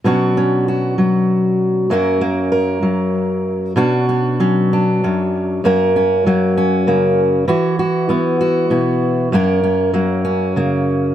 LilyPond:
\new Staff \with { instrumentName = "Steel-string acoustic guitar" } { \time 6/8 \key b \minor \tempo 4. = 65 << { <fis cis' d' fis'>8 cis'8 fis'2 | <fis ais cis' ais'>8 ais8 ais'2 | <cis' d' fis'>8 d'8 cis'8 d'8 cis'4 | <ais cis' ais'>8 cis'8 ais8 cis'8 ais4 |
<e' fis'>8 fis'8 e'8 fis'8 e'4 | <ais cis' ais'>8 cis'8 ais8 cis'8 ais4 | } \\ { b,4. fis4. | fis,4. fis4. | b,4 fis4 fis,4 | fis,4 fis4 cis4 |
e4 b4 b,4 | fis,4 fis4 cis4 | } >> }